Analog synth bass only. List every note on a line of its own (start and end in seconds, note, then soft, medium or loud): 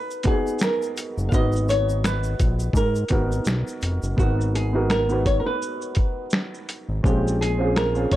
1.18 1.30 F#1 medium
1.33 2.36 G#1 loud
2.40 2.70 A#1 loud
2.74 3.05 G#2 loud
3.11 3.41 G#1 loud
3.47 3.64 B1 loud
3.82 4.00 F1 medium
4.03 4.16 F#1 medium
4.18 5.42 G#1 loud
6.89 7.02 G#1 medium
7.04 8.07 A#1 loud
8.12 8.16 C2 loud